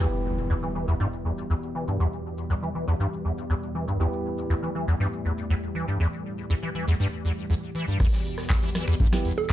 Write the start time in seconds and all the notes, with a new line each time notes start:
0.00 E2 B2 G3 B3 E4 G4, impact, shaker
0.13 shaker
0.38 shaker
0.50 E2, shaker
0.63 E3, shaker
0.75 E3
0.88 E2, shaker
1.00 G2, shaker
1.13 shaker
1.25 E2
1.38 shaker
1.50 E2, shaker
1.63 shaker
1.75 E3
1.88 G2, shaker
2.00 E2, shaker
2.13 shaker
2.38 shaker
2.50 E2, shaker
2.63 E3, shaker
2.75 E3
2.88 E2, shaker
3.00 G2, shaker
3.13 shaker
3.25 E2
3.38 shaker
3.50 E2, shaker
3.63 shaker
3.75 E3
3.88 G2, shaker
4.00 E2 A2 B3 E4 G4, shaker
4.13 shaker
4.38 shaker
4.50 E2, shaker
4.63 E3, shaker
4.75 E3
4.88 E2, shaker
5.00 G2, shaker
5.13 shaker
5.25 E2
5.38 shaker
5.50 E2, shaker
5.63 shaker
5.75 E3
5.88 G2, shaker
6.00 E2, shaker
6.13 shaker
6.38 shaker
6.50 E2, shaker
6.63 E3, shaker
6.75 E3
6.88 E2, shaker
7.00 G2, shaker
7.13 shaker
7.25 E2
7.38 shaker
7.50 E2, shaker
7.63 shaker
7.75 E3
7.88 G2, shaker
8.00 E2 B2 G3, kick, cross-stick, closed hi-hat, crash, shaker
8.13 snare, closed hi-hat, shaker
8.25 open hi-hat, shaker
8.38 cross-stick, snare, closed hi-hat, shaker
8.49 E2, kick, snare, clap, closed hi-hat, open hi-hat, shaker
8.62 E3, snare, closed hi-hat, shaker
8.75 E3, cross-stick, snare, open hi-hat, shaker
8.88 E2, finger snap, closed hi-hat, shaker
9.00 G2, kick, closed hi-hat, shaker
9.12 B3 E4 G4, cross-stick, snare, closed hi-hat, shaker
9.25 E2, open hi-hat, shaker
9.38 A4, closed hi-hat, shaker
9.50 clap, shaker